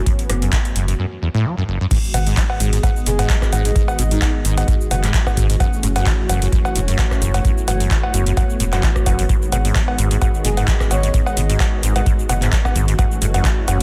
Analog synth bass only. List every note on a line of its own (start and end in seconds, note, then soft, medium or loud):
0.30 0.49 F#1 loud
0.76 0.95 F#1 medium
2.14 2.34 G#1 loud
2.60 2.80 G#1 medium
3.06 3.26 F#1 loud
3.53 3.72 G#1 loud
3.99 4.18 G#1 loud
4.45 4.64 G#1 medium
4.91 5.11 F#1 loud
5.37 5.57 G#1 loud
5.83 6.03 F#1 loud
6.29 6.49 F#1 medium
6.76 6.95 E1 loud
7.22 7.41 F#1 loud
7.68 7.87 F#1 loud
8.14 8.34 F#1 medium
8.60 8.80 E1 loud
9.06 9.26 F#1 loud
9.52 9.72 G#1 loud
9.99 10.18 G#1 medium
10.45 10.64 F#1 loud
10.91 11.11 G#1 loud
11.37 11.57 G#1 loud
11.83 12.03 G#1 medium
12.29 12.49 F#1 loud
12.76 12.95 G#1 loud
13.22 13.41 F#1 loud
13.68 13.83 F#1 medium